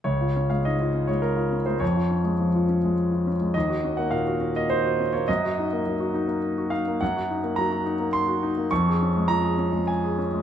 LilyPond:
\new Staff \with { instrumentName = "Grand piano" } { \time 3/4 \key des \major \tempo 4 = 104 << { des''8. f''16 ees''8. des''16 bes'8. c''16 | des''2~ des''8 r8 | ees''8. ges''16 f''8. ees''16 c''8. des''16 | ees''2~ ees''8 f''8 |
ges''4 bes''4 c'''4 | des'''4 bes''4 aes''8 r8 | } \\ { des,16 f'16 des'16 aes16 aes,16 f'16 des'16 aes8 f'16 des'16 aes16 | f,16 f'16 des'16 aes16 f16 f'16 des'16 aes8 f'16 des'16 aes16 | ees,16 ges'16 des'16 bes16 bes,16 ges'16 des'16 bes8 ges'16 des'16 bes16 | ges,16 ges'16 ees'16 bes16 ges16 ges'16 ees'16 bes8 ges'16 ees'16 bes16 |
ges,16 ges'16 ees'16 bes16 ges8 ees'16 bes8 ges'16 ees'16 bes16 | f,16 aes'16 des'16 aes16 f16 aes'16 des'16 aes8 aes'16 des'16 aes16 | } >> }